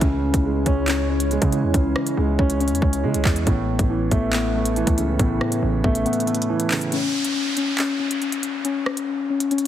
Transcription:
Already playing: C#4 E4
0.01 C#2 C#3 G#3 C#4 C#5, kick, closed hi-hat
0.34 C#2, kick, closed hi-hat
0.45 G#3
0.66 C#2 C#4, kick, closed hi-hat
0.87 C#4 C#5, clap, closed hi-hat
1.09 C#4
1.20 closed hi-hat
1.31 G#3, closed hi-hat
1.42 C#3, kick, closed hi-hat
1.52 E3, closed hi-hat
1.63 E2
1.74 C#2 C#3 C#4, kick, closed hi-hat
1.96 cross-stick
2.07 closed hi-hat
2.17 C#2 G#3
2.39 C#2 C#4, kick
2.50 closed hi-hat
2.60 C#4 C#5, closed hi-hat
2.68 E2, closed hi-hat
2.75 closed hi-hat
2.82 C#2 C#4, kick
2.93 closed hi-hat
3.04 C#3 G#3
3.14 C#2, closed hi-hat
3.25 E2 E3, kick, clap
3.36 closed hi-hat
3.47 A1 A2 A3 B3 C#4 E4 B4, kick, closed hi-hat
3.79 A1, kick, closed hi-hat
3.90 E3
4.11 A1 A3 B3, kick, closed hi-hat
4.33 B3, clap, closed hi-hat
4.55 A3 B3
4.66 closed hi-hat
4.76 E3, closed hi-hat
4.87 C#2, kick, closed hi-hat
4.98 C#3, closed hi-hat
5.19 A1 A2 B3, kick, closed hi-hat
5.41 cross-stick
5.52 closed hi-hat
5.63 A1 E3
5.84 A1 A3 B3, kick
5.95 closed hi-hat
6.06 B3, closed hi-hat
6.13 closed hi-hat
6.20 closed hi-hat
6.27 A3 B3, closed hi-hat
6.35 closed hi-hat
6.42 closed hi-hat
6.49 E3
6.60 closed hi-hat
6.70 C#3, clap, open hi-hat
6.81 closed hi-hat
6.92 C#4, closed hi-hat, downlifter
7.25 closed hi-hat
7.57 C#4, closed hi-hat
7.78 C#4, clap, closed hi-hat
8.00 C#4
8.11 closed hi-hat
8.22 closed hi-hat
8.32 closed hi-hat
8.43 closed hi-hat
8.65 C#4, closed hi-hat
8.86 cross-stick
8.97 closed hi-hat
9.30 C#4
9.40 closed hi-hat
9.51 C#4, closed hi-hat
9.58 closed hi-hat

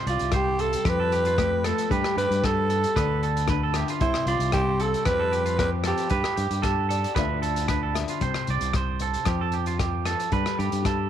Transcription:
Already playing: C3 C4
0.06 C2 F4 D5, closed hi-hat
0.19 C2, closed hi-hat
0.32 G3 C5, kick, cross-stick, closed hi-hat
0.36 G4
0.59 G4 A4, closed hi-hat
0.73 closed hi-hat
0.85 F2 F3 G4, kick, cross-stick, closed hi-hat
0.89 B4
1.00 A4
1.12 G4, closed hi-hat
1.25 F4, closed hi-hat
1.38 A3 G4, kick, cross-stick, closed hi-hat
1.64 A4, muted nylon-string guitar stroke, cross-stick, closed hi-hat
1.78 closed hi-hat
1.90 G2 G3 G4 B4, kick, closed hi-hat
2.04 cross-stick
2.16 G2 G4 B4, closed hi-hat
2.30 G2, closed hi-hat
2.42 G4 A4, kick, cross-stick, closed hi-hat
2.70 G4 A4, closed hi-hat
2.84 closed hi-hat
2.96 D2 D3 B4, kick, cross-stick, closed hi-hat
3.23 A4, closed hi-hat
3.37 closed hi-hat
3.47 D4 B4, kick, cross-stick, closed hi-hat
3.63 A4
3.74 G4 E5, cross-stick, closed hi-hat
3.88 F4, closed hi-hat
4.01 C2 C3 E4 C5, kick, closed hi-hat
4.14 cross-stick
4.26 C2 F4 D5, closed hi-hat
4.39 C2, closed hi-hat
4.52 G3 G4 C5, kick, cross-stick, closed hi-hat
4.80 G4 A4, closed hi-hat
4.94 closed hi-hat
5.05 F2 F3 G4 B4, kick, cross-stick, closed hi-hat
5.20 A4
5.32 G4, closed hi-hat
5.46 F4, closed hi-hat
5.58 C4 G4 B4, kick, cross-stick, closed hi-hat
5.84 F4 G4 A4, cross-stick, closed hi-hat
5.98 closed hi-hat
6.10 G2 B4, muted nylon-string guitar stroke, kick, closed hi-hat
6.24 cross-stick
6.36 G2 G4, closed hi-hat
6.50 G2, closed hi-hat
6.62 G4 A4, kick, cross-stick, closed hi-hat
6.89 A4 D5, closed hi-hat
7.04 closed hi-hat
7.15 D2 D3 D4 F4 A4 B4 E5, kick, cross-stick, closed hi-hat
7.42 A4, closed hi-hat
7.56 closed hi-hat
7.68 D4 B4, kick, cross-stick, closed hi-hat
7.83 A4
7.94 E5, muted clean electric guitar stroke, cross-stick, closed hi-hat
8.08 F4, closed hi-hat
8.21 C2 C3 C5, kick, closed hi-hat
8.34 cross-stick
8.47 C2 D5, closed hi-hat
8.61 C2, closed hi-hat
8.73 C5, kick, cross-stick, closed hi-hat
8.99 A4, muted nylon-string guitar stroke, closed hi-hat
9.14 closed hi-hat
9.25 F2 F3 G4, kick, cross-stick, closed hi-hat
9.41 A4
9.52 G4, closed hi-hat
9.66 F4, closed hi-hat
9.79 G4, kick, cross-stick, closed hi-hat
10.05 A4, cross-stick, closed hi-hat
10.20 closed hi-hat
10.32 G2 G3 B4, kick, closed hi-hat
10.46 cross-stick
10.59 G2 G4, closed hi-hat
10.72 G2, closed hi-hat
10.82 G4 A4, kick, cross-stick, closed hi-hat

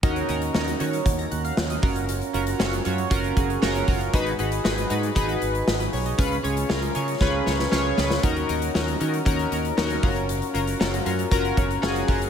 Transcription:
0.03 D#2 D#3 C#4 D#4 F#4 A#4, kick, closed hi-hat
0.16 closed hi-hat
0.28 D#2 C#4 D#4 F#4 A#4, closed hi-hat
0.42 closed hi-hat
0.54 D#2 C#4 D#4 F#4 A#4, snare
0.68 closed hi-hat
0.80 D#3 C#4 D#4 F#4 C#5, closed hi-hat
0.93 closed hi-hat
1.06 D#2, kick, closed hi-hat
1.19 A#5, closed hi-hat
1.31 D#2 F#5, closed hi-hat
1.45 F5, closed hi-hat
1.57 D#2, snare
1.70 D#5, closed hi-hat
1.82 F#1 C#4 F4 F#4 A#4, kick, open hi-hat
1.96 closed hi-hat
2.09 closed hi-hat
2.22 closed hi-hat
2.33 F#1 C#4 F4 F#4 A#4, closed hi-hat
2.47 closed hi-hat
2.59 F#1 C#4 F4 F#4 C#5, snare
2.73 closed hi-hat
2.85 F#2 C#4 F4 F#4 C#5, closed hi-hat
2.98 closed hi-hat
3.10 F#1 C#4 F4 F#4 A#4, kick, closed hi-hat
3.24 closed hi-hat
3.36 F#1 C#4 F4 F#4 G#4, kick, closed hi-hat
3.50 closed hi-hat
3.62 F#1 C#4 F4 F#4 A#4, snare
3.75 closed hi-hat
3.88 F#1 C#4 F4 F#4 A#4, kick, open hi-hat
4.01 closed hi-hat
4.13 G#1 G#2 D#4 F#4 G#4 B4, kick, closed hi-hat
4.26 closed hi-hat
4.39 G#1 D#4 F#4 G#4 B4, closed hi-hat
4.52 closed hi-hat
4.64 G#1 D#4 F#4 G#4 B4, snare
4.78 closed hi-hat
4.90 G#2 D#4 F#4 G#4 B4, closed hi-hat
5.03 closed hi-hat
5.15 G#1 D#4 F#4 G#4 B4, kick, closed hi-hat
5.29 closed hi-hat
5.42 G#1, closed hi-hat
5.55 closed hi-hat
5.67 G#1, snare
5.80 B4, closed hi-hat
5.93 B1 C#5, open hi-hat
6.06 D#5, closed hi-hat
6.18 C#2 C#3 C#4 F4 G#4 B4, kick, closed hi-hat
6.32 closed hi-hat
6.43 C#2 C#4 F4 G#4 C#5, closed hi-hat
6.57 closed hi-hat
6.69 C#2 C#4 F4 G#4 A#4, snare
6.82 closed hi-hat
6.95 C#3 C#4 F4 G#4 C#5, closed hi-hat
7.08 closed hi-hat
7.21 C#2 C#4 F4 G#4 B4, kick, snare
7.46 C#2 C#4 F4 G#4 C#5, snare
7.59 snare
7.71 C#2 C#4 F4 G#4 C#5, snare
7.97 C#2 C#4 F4 G#4 B4, snare
8.10 snare
8.23 D#2 D#3 C#4 D#4 F#4 A#4, kick, closed hi-hat
8.37 closed hi-hat
8.48 D#2 C#4 D#4 F#4 A#4, closed hi-hat
8.62 closed hi-hat
8.74 D#2 C#4 D#4 F#4 A#4, snare
8.88 closed hi-hat
9.00 D#3 C#4 D#4 F#4 A#4, closed hi-hat
9.14 closed hi-hat
9.25 D#2 C#4 D#4 F#4 A#4, kick, closed hi-hat
9.39 closed hi-hat
9.51 D#2 C#4 D#4 F#4 A#4, closed hi-hat
9.65 closed hi-hat
9.77 D#2 C#4 D#4 F#4 A#4, snare
9.90 closed hi-hat
10.03 F#1 C#4 F4 F#4 A#4, kick, open hi-hat
10.16 closed hi-hat
10.29 closed hi-hat
10.42 closed hi-hat
10.54 F#1 C#4 F4 F#4 A#4, closed hi-hat
10.67 closed hi-hat
10.79 F#1 C#4 F4 F#4 A#4, snare
10.94 closed hi-hat
11.05 F#2 C#4 F4 F#4 A#4, closed hi-hat
11.19 closed hi-hat
11.31 F#1 C#4 F4 F#4 A#4, kick, closed hi-hat
11.45 closed hi-hat
11.56 F#1 C#4 F4 F#4 C#5, kick, closed hi-hat
11.71 closed hi-hat
11.82 F#1 C#4 F4 F#4 G#4 G#5, snare
11.96 closed hi-hat
12.08 F#1 C#4 F4 F#4 A#4 F#5, kick, open hi-hat
12.22 closed hi-hat

